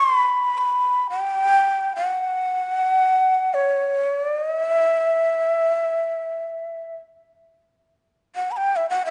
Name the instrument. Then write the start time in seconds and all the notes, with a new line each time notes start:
shakuhachi
Already playing: C#6
0.02 C6
0.16 B5
0.58 B5
1.10 G5
1.96 F#5
3.54 C#5
4.09 D5
4.35 D#5
4.61 E5
8.36 F#5
8.51 B5
8.57 G5
8.76 E5
8.90 F#5
9.06 E5